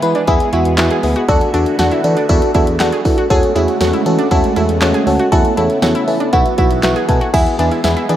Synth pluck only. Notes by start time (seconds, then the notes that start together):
0.15 D4
0.28 E4
0.53 E4
0.78 F#4
0.91 G#4
1.16 F#4
1.29 F#4
1.54 D4
1.79 F#4
1.92 E4
2.17 D4
2.30 E4
2.55 E4
2.80 F#4
2.92 G#4
3.18 F#4
3.30 G#4
3.56 E4
3.81 F#4
3.93 E4
4.19 D4
4.31 E4
4.56 E4
4.82 F#4
4.94 G#4
5.19 F#4
5.32 F#4
5.57 E4
5.82 F#4
5.95 E4
6.20 D4
6.33 E4
6.58 E4
6.83 F#4
6.96 G#4
7.21 F#4
7.34 E4
7.59 D4
7.72 E4
7.84 E4
7.97 E4
8.09 D4